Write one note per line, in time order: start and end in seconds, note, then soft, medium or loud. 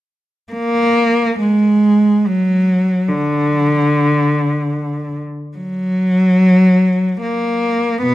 0.53 1.37 A#3 medium
1.41 2.26 G#3 medium
2.27 3.09 F#3 medium
3.09 5.16 D3 medium
5.57 7.18 F#3 medium
7.22 8.03 A#3 medium
8.03 8.14 B2 medium
8.03 8.14 B3 medium